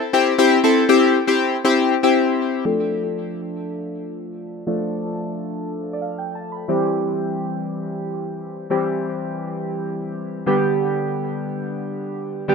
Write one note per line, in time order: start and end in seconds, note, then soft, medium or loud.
0.13 0.33 C4 medium
0.13 0.33 E4 medium
0.13 0.33 G4 loud
0.38 0.58 C4 loud
0.38 0.58 E4 medium
0.38 0.58 G4 loud
0.64 0.84 C4 medium
0.64 0.84 E4 medium
0.64 0.84 A4 loud
0.89 1.18 C4 loud
0.89 1.18 E4 medium
0.89 1.19 G4 loud
1.27 1.56 C4 medium
1.27 1.57 E4 medium
1.27 1.57 G4 loud
1.64 1.94 C4 loud
1.64 1.94 E4 medium
1.64 1.94 G4 loud
2.03 2.65 C4 medium
2.03 2.66 E4 medium
2.03 2.66 G4 medium
2.65 4.63 F3 medium
2.65 4.63 A3 medium
2.65 4.63 D4 medium
2.65 4.63 A4 medium
4.67 6.65 F3 medium
4.67 6.65 A3 medium
4.67 6.65 D4 medium
4.67 6.65 A4 medium
5.93 6.01 D5 medium
6.02 6.17 F5 medium
6.18 6.34 G5 medium
6.35 6.51 A5 medium
6.52 6.68 B5 medium
6.68 8.66 E3 medium
6.68 8.66 G3 medium
6.68 8.67 C4 medium
6.68 8.67 G4 medium
8.70 10.43 E3 medium
8.70 10.43 G3 medium
8.70 10.44 C4 medium
8.70 10.44 G4 medium
10.46 12.44 D3 medium
10.46 12.45 G3 medium
10.46 12.45 B3 medium
10.46 12.45 G4 medium
12.48 12.55 D3 medium
12.48 12.55 G3 medium
12.48 12.55 B3 medium
12.48 12.55 G4 medium